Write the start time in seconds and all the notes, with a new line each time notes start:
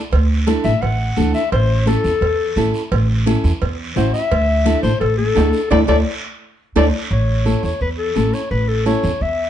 0.11 D2, cowbell, high conga, long guiro
0.47 D4 E4 A4, high conga, short guiro
0.64 A1 E5, high conga, short guiro
0.82 A1 F#5, cowbell, high conga, low conga, long guiro
1.17 D2 D4 E4 A4, high conga, low conga, short guiro
1.34 E5, short guiro
1.52 A1 C5, cowbell, high conga, long guiro
1.86 C#4 E4 A4, high conga, short guiro
2.04 E2, short guiro
2.21 E2, cowbell, high conga, long guiro
2.56 A1 C#4 E4 A4, high conga, short guiro
2.74 short guiro
2.92 A1, cowbell, high conga, long guiro
3.26 C#4 E4 A4, high conga, short guiro
3.44 E2, short guiro
3.61 E2, cowbell, high conga, long guiro
3.96 A1 C#4 E4 F#4 C5, high conga, low conga, short guiro
4.14 E5, short guiro
4.31 D2, cowbell, high conga, long guiro
4.65 D4 E4 A4, high conga, short guiro
4.83 A1 C5, high conga, short guiro
5.00 A1 A4, cowbell, high conga, long guiro
5.18 A4, high conga
5.35 D2 D4 E4 A4, high conga, low timbale, short guiro
5.53 short guiro
5.70 D2 D4 E4 A4 D5, high conga, high timbale, long guiro
5.87 D2 D4 E4 A4 D5, high conga, high timbale, long guiro
6.76 D2 D4 E4 A4 D5, high conga, high timbale, long guiro
7.11 A1 C#5, high conga, long guiro
7.45 C#4 E4 A4, high conga, short guiro
7.63 E2 C#5, short guiro
7.81 E2 B4, high conga, long guiro
7.98 A4
8.15 A1 C#4 E4 A4, high conga, short guiro
8.34 C#5, short guiro
8.51 A1 B4, high conga, long guiro
8.68 A4
8.86 C#4 E4 A4 C#5, high conga, short guiro
9.03 E2, low conga, short guiro
9.21 E2 E5, high conga, long guiro